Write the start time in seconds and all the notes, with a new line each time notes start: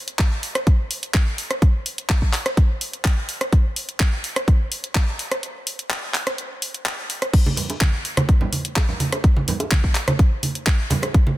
0.08 closed hi-hat
0.19 kick, clap, closed hi-hat
0.43 open hi-hat
0.55 cross-stick, closed hi-hat
0.67 kick, closed hi-hat
0.91 open hi-hat
1.03 closed hi-hat
1.14 kick, clap, closed hi-hat
1.38 open hi-hat
1.51 cross-stick, closed hi-hat
1.62 kick, closed hi-hat
1.86 open hi-hat
1.98 closed hi-hat
2.09 kick, clap, closed hi-hat
2.22 kick
2.33 clap, open hi-hat
2.46 cross-stick, closed hi-hat
2.57 kick, closed hi-hat
2.81 open hi-hat
2.93 closed hi-hat
3.05 kick, clap, closed hi-hat
3.29 open hi-hat
3.41 cross-stick, closed hi-hat
3.53 kick, closed hi-hat
3.76 open hi-hat
3.89 closed hi-hat
4.00 kick, clap, closed hi-hat
4.24 open hi-hat
4.36 cross-stick, closed hi-hat
4.48 kick, closed hi-hat
4.72 open hi-hat
4.84 closed hi-hat
4.95 kick, clap, closed hi-hat
5.19 open hi-hat
5.32 cross-stick, closed hi-hat
5.43 closed hi-hat
5.67 open hi-hat
5.79 closed hi-hat
5.90 clap, closed hi-hat
6.14 clap, open hi-hat
6.27 cross-stick, closed hi-hat
6.38 closed hi-hat
6.62 open hi-hat
6.74 closed hi-hat
6.86 clap, closed hi-hat
7.10 open hi-hat
7.22 cross-stick, closed hi-hat
7.33 kick, closed hi-hat, crash
7.46 high conga
7.57 open hi-hat, low conga
7.70 closed hi-hat, high bongo
7.81 kick, clap, closed hi-hat, high conga
8.05 open hi-hat
8.17 cross-stick, closed hi-hat, high conga
8.29 kick, closed hi-hat
8.41 low conga
8.52 open hi-hat, high conga
8.65 closed hi-hat
8.76 kick, clap, closed hi-hat, high bongo
8.89 low conga
9.00 open hi-hat, high conga
9.12 cross-stick, closed hi-hat, high bongo
9.24 kick, closed hi-hat
9.37 high conga
9.48 open hi-hat, low conga
9.60 closed hi-hat, high bongo
9.71 kick, clap, closed hi-hat, high conga
9.84 kick
9.95 clap, open hi-hat
10.08 cross-stick, closed hi-hat, high conga
10.19 kick, closed hi-hat
10.43 open hi-hat, high conga
10.55 closed hi-hat
10.67 kick, clap, closed hi-hat
10.90 open hi-hat, high bongo, high conga, low conga
11.03 cross-stick, closed hi-hat, high bongo
11.14 kick, closed hi-hat
11.27 high conga